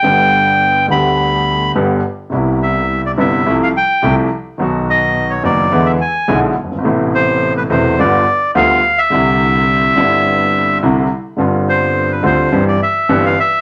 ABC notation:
X:1
M:4/4
L:1/16
Q:1/4=106
K:C
V:1 name="Bandoneon"
g6 b6 z4 | z2 e3 d e3 f g3 z3 | z2 ^d3 _d =d3 e ^g3 z3 | z2 c3 B c2 d4 f3 e- |
e12 z4 | z2 c3 B c3 d e3 f e2 |]
V:2 name="Grand piano" clef=bass
[G,,,G,,D,G,B,G]6 [D,,D,G,B,G]6 [G,,,G,,D,G,B,G]2 z2 | [C,,C,G,B,E]6 [G,,,G,,C,G,B,E]2 [C,,C,F,A,E]2 z2 [C,,C,F,A,E]2 z2 | [B,,,B,,^D,^F,B,^F]6 [^F,,,^F,,D,F,B,F]2 [E,,=D,E,^G,B,E]2 z2 [B,,,B,,D,G,B,E]2 z/2 F,,,/2 =G,,,/2 ^G,,,/2 | [A,,,A,,B,,C,A,E]6 [E,,,E,,C,A,B,E]2 [G,,,G,,D,G,B,F]2 z2 [D,,D,G,B,F]2 z2 |
[C,,C,D,G,CE]6 [G,,,G,,D,G,CE]6 [C,,C,D,G,CE]2 z2 | [G,,,G,,D,G,CF]6 [D,,D,G,CF]2 [G,,,G,,E,G,CG]2 z2 [G,,,G,,E,G,CG]2 z2 |]
V:3 name="Double bass" clef=bass
G,,,6 D,,6 G,,,2 z2 | C,,6 G,,,2 C,,2 z2 C,,2 z2 | B,,,6 ^F,,,2 E,,2 z2 B,,,2 G,,,2 | A,,,6 E,,,2 G,,,2 z2 D,,2 z2 |
C,,6 G,,,6 C,,2 z2 | G,,,6 D,,2 G,,,2 z2 G,,,2 z2 |]